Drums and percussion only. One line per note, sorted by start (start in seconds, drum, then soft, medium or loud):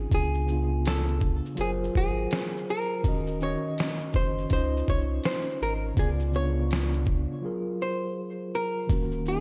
0.12 kick loud
0.12 closed hi-hat medium
0.12 shaker medium
0.34 shaker soft
0.48 shaker medium
0.85 snare loud
0.85 closed hi-hat medium
0.85 shaker medium
1.08 shaker soft
1.20 kick loud
1.20 shaker medium
1.45 shaker soft
1.57 closed hi-hat medium
1.57 shaker medium
1.84 shaker medium
1.95 kick medium
1.95 shaker soft
2.31 snare loud
2.31 closed hi-hat medium
2.31 shaker medium
2.57 shaker soft
2.69 shaker soft
3.04 kick loud
3.04 closed hi-hat medium
3.04 shaker medium
3.27 shaker soft
3.41 shaker soft
3.78 snare loud
3.78 closed hi-hat medium
3.78 shaker medium
4.01 shaker soft
4.13 kick medium
4.13 shaker soft
4.38 shaker soft
4.50 kick medium
4.50 closed hi-hat medium
4.50 shaker medium
4.77 shaker soft
4.88 kick medium
4.88 shaker soft
5.24 snare loud
5.24 closed hi-hat medium
5.24 shaker medium
5.50 shaker soft
5.62 shaker soft
5.97 kick loud
5.97 closed hi-hat medium
5.97 shaker medium
6.20 shaker soft
6.33 shaker medium
6.71 snare loud
6.71 closed hi-hat medium
6.71 shaker medium
6.93 shaker soft
7.05 kick medium
7.05 shaker soft
8.89 kick loud
8.89 closed hi-hat medium
8.89 shaker medium
9.12 shaker soft
9.26 shaker medium